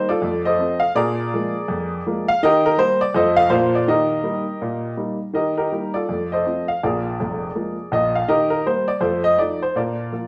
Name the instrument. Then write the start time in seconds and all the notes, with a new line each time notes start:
upright piano
0.09 F4 A4 D5
0.22 F2 A3
0.45 A4 C5 D#5
0.59 F3 A3 C4
0.80 F5
0.95 A#2 D4 G#4 A#4 D5
1.33 F3 G#3 A#3
1.68 F2
2.06 F3 G#3 A#3
2.28 F5
2.43 D#3 G4 A#4 D#5
2.66 A#4
2.77 G3 A#3 C5
3.01 D5
3.14 F2 F3 A3 F4 A4 C5 D#5
3.37 F5
3.50 A#2 F3 A#3 D4 F4 C5
3.75 D5
3.88 D#3 G4 A#4 D#5
4.23 G3 A#3 D#4
4.62 A#2
4.97 G3 A#3 D#4
5.33 D#3 G4 A#4 D#5
5.57 D#4 G4 A#4
5.72 G3 A#3 D#4
5.94 F4 A4 D5
6.09 F2 A3
6.32 A4 C5 D#5
6.46 F3 A3 C4
6.68 F5
6.83 A#1 A#2 G#4 A#4 D5
7.20 F1 F2
7.55 F3 G#3 A#3
7.92 A#1 A#2 D#5
8.15 F5
8.28 D#3 G4 A#4 D#5
8.50 A#4
8.66 G3 A#3 C5
8.88 D5
9.01 F2 A3 F4 A4 C5
9.24 D#5
9.38 F3 A3 D#4 D5
9.62 C5
9.76 A#2 D4 F4 A#4 D5
10.12 F3 A#3 F4